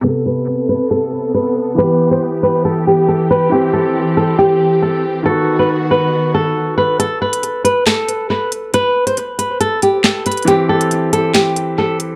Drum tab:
HH |--------------------------------|--------------------------------|--------------------------------|--------------------------------|
CP |--------------------------------|--------------------------------|--------------------------------|--------------------------------|
SD |--------------------------------|--------------------------------|--------------------------------|--------------------------------|

HH |x-----x-x---x---x---x-------x---|x-----x-x---x---x---x-------xxxx|x-----x-x---x---x---x-------x---|
CP |----------------x---------------|------------------------x-------|----------------x---------------|
SD |----------------o---------------|------------------------o-------|----------------o---------------|